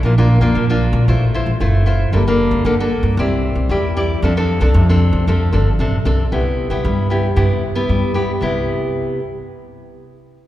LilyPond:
<<
  \new Staff \with { instrumentName = "Nylon-string guitar" } { \time 4/4 \key f \major \tempo 4 = 114 << { <bes d' f'>16 <bes d' f'>8 <bes d' f'>8 <bes d' f'>8. <e' f' c''>16 r16 <e' f' c''>16 r16 <e' f' c''>8 <e' f' c''>8 | <bes d' a'>16 <bes d' a'>8. <bes d' a'>16 <bes d' a'>8. <e' g' d''>4 <e' g' d''>8 <e' g' d''>8 | <c' d' a'>16 <c' d' a'>8 <c' d' a'>8 <c' d' a'>8. <c' d' a'>8 <c' d' a'>16 r16 <c' d' a'>16 r16 <c' d' a'>16 r16 | \key c \major <b e' g'>8. <b e' g'>8. <b e' g'>16 r16 <b e' g'>8 r16 <b e' g'>8. <b e' g'>16 r16 |
<c b e' g'>8 r2. r8 | } \\ { bes,4 f4 a4 a4 | g4 d4 c'4 g4 | f4 c4 f4 c4 | c4 g4 c4 g4 |
r1 | } >> }
  \new Staff \with { instrumentName = "Upright bass" } { \clef bass \time 4/4 \key f \major bes,,8. f,16 bes,,8. bes,16 a,,8. a,,16 ges,,4 | g,,8. d,16 g,,8. g,16 c,8. c,16 e,4 | f,8. c,16 f,8. f16 f,8 g,,8 a,,8 c,8 | \key c \major c,8. c,16 g,4 g,8 r8 g,4 |
c,8 r2. r8 | }
>>